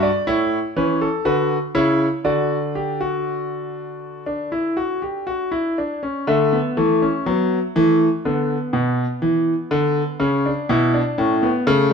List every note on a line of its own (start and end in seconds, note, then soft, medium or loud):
0.03 0.27 D5 medium
0.27 0.58 A2 medium
0.27 0.57 E4 medium
0.27 0.57 C#5 medium
0.76 1.07 E3 medium
0.76 1.07 C#4 medium
0.76 1.00 B4 medium
1.01 1.25 A4 medium
1.25 1.56 D3 medium
1.25 1.56 F#4 medium
1.25 1.56 B4 medium
1.75 2.06 C#3 medium
1.75 2.06 E4 loud
1.75 2.06 C#5 medium
2.24 5.73 D3 medium
2.24 2.56 F#4 medium
2.24 5.73 D5 medium
2.75 3.00 G4 medium
3.01 4.23 F#4 medium
4.26 4.51 D4 medium
4.52 4.76 E4 medium
4.77 5.01 F#4 medium
5.02 5.26 G4 medium
5.27 5.51 F#4 medium
5.52 5.76 E4 medium
5.78 6.02 D4 medium
6.03 6.27 C#4 medium
6.27 6.58 D3 loud
6.27 6.52 A3 medium
6.27 11.93 E5 medium
6.53 6.77 B3 medium
6.77 7.08 E3 medium
6.77 7.01 A3 medium
7.02 7.26 C#4 medium
7.26 7.57 F#3 medium
7.26 7.57 B3 medium
7.76 8.07 E3 loud
7.76 8.07 A3 medium
8.25 8.56 D3 medium
8.25 10.16 B3 medium
8.73 9.04 B2 medium
9.22 9.52 E3 medium
9.71 10.01 D3 loud
10.20 10.50 C#3 medium
10.20 10.44 C#4 medium
10.46 10.69 D4 medium
10.69 11.00 B2 loud
10.69 10.93 E4 medium
10.94 11.18 D4 medium
11.18 11.49 A2 loud
11.18 11.42 C#4 medium
11.43 11.67 B3 medium
11.67 11.93 C#3 loud
11.67 11.91 A3 medium